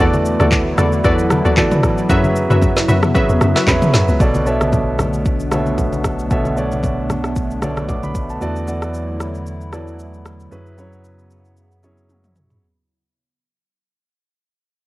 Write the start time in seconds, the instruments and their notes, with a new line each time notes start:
Already playing: analog synth pad A3
0.00 log drum bass E2, analog synth pad D3 F#3 E4, grand piano E3 B3 F#4 A4 D5, synth pluck F#4 A4 D5
0.13 high conga, shaker
0.25 shaker
0.39 log drum bass D2, synth pluck F#4 A4 D5, cross-stick, high conga, shaker
0.51 kick, clap, low conga, shaker
0.78 log drum bass E2, synth pluck F#4 A4 D5, cross-stick, high conga, shaker
0.92 shaker
1.04 log drum bass E2, grand piano E3 B3 F#4 A4 B4, synth pluck F#4 A4 D5, kick, shaker
1.19 shaker
1.30 cross-stick, high conga, shaker
1.45 log drum bass D2, synth pluck F#4 A4 D5, shaker
1.57 grand piano E3 B3 F#4 A4 D5, kick, clap, low conga, shaker
1.71 mid tom, high conga, shaker
1.83 kick, cross-stick, shaker
1.98 shaker
2.09 log drum bass F#2, analog synth pad C#3 B3, grand piano F#3 C#4 G#4 B4 E5, synth pluck F#4 B4 E5, kick, shaker
2.24 high conga, shaker
2.36 shaker
2.50 log drum bass F#2, synth pluck F#4 B4 E5, high conga, shaker
2.62 kick, low conga, shaker
2.77 snare, shaker
2.88 log drum bass F#2, synth pluck F#4 B4 E5, high conga, shaker
3.03 cross-stick, mid tom, shaker
3.14 grand piano F#3 C#4 G#4 B4 E5, synth pluck F#4 B4 E5, kick, shaker
3.29 log drum bass E2, shaker
3.41 log drum bass F#2, cross-stick, high conga, shaker
3.55 synth pluck F#4 B4 E5, snare, shaker
3.67 log drum bass E2, grand piano F#3 C#4 G#4 B4 E5 B5, kick, clap, low conga, shaker
3.82 mid tom, high conga, shaker
3.94 log drum bass F#2, snare, shaker
4.08 log drum bass C#2, shaker
4.20 analog synth bass B1, grand piano B2 B3 A4 C#5 D5, analog synth pad D3 A3 B3 D4, kick, shaker
4.35 high conga, shaker
4.46 grand piano B2 B3 A4 C#5 E5, shaker
4.61 cross-stick, high conga, shaker
4.72 kick, low conga, shaker
4.99 cross-stick, high conga, low conga, shaker
5.14 shaker
5.25 kick, shaker
5.40 shaker
5.51 grand piano B2 B3 A4 C#5 E5, cross-stick, high conga, shaker
5.66 high conga, shaker
5.78 kick, low conga, shaker
5.92 high conga, shaker
6.04 kick, cross-stick, shaker
6.19 shaker
6.30 grand piano B2 B3 A4 C#5 E5, kick, shaker
6.45 high conga, shaker
6.56 grand piano B2 B3 A4 C#5 D5, shaker
6.72 high conga, shaker
6.83 kick, low conga, shaker
7.10 cross-stick, high conga, low conga, shaker
7.24 cross-stick, shaker
7.36 kick, shaker
7.50 shaker
7.62 grand piano B2 B3 A4 C#5 D5, cross-stick, high conga, shaker
7.77 cross-stick, high conga, shaker
7.88 grand piano D6, kick, low conga, shaker
8.03 grand piano B5, high conga, shaker
8.15 kick, shaker
8.30 grand piano A5, shaker
8.41 analog synth bass E2, analog synth pad D3 F#3 E4, grand piano E3 B3 F#4 A4 D5, shaker
8.56 shaker
8.67 grand piano E3 B3 F#4 A4 D5, shaker
8.82 cross-stick, shaker
8.94 shaker
9.20 cross-stick, shaker
9.35 shaker
9.47 shaker
9.61 shaker
9.72 grand piano E3 B3 F#4 A4 D5, cross-stick, shaker
9.87 shaker
9.99 shaker
10.14 shaker
10.26 cross-stick, shaker
10.40 shaker
10.51 analog synth bass F#2, analog synth pad C#3 B3, grand piano F#3 C#4 E4 G#4 B4, shaker
10.66 shaker
10.78 grand piano F#3 C#4 E4 G#4 C#5, shaker
10.93 shaker
11.05 shaker
11.19 shaker
11.31 shaker
11.45 shaker
11.57 shaker
11.72 shaker
11.83 grand piano F#3 C#4 E4 G#4 C#5, shaker
11.98 shaker
12.09 high tom, shaker
12.24 mid tom, shaker
12.36 mid tom, shaker
12.50 floor tom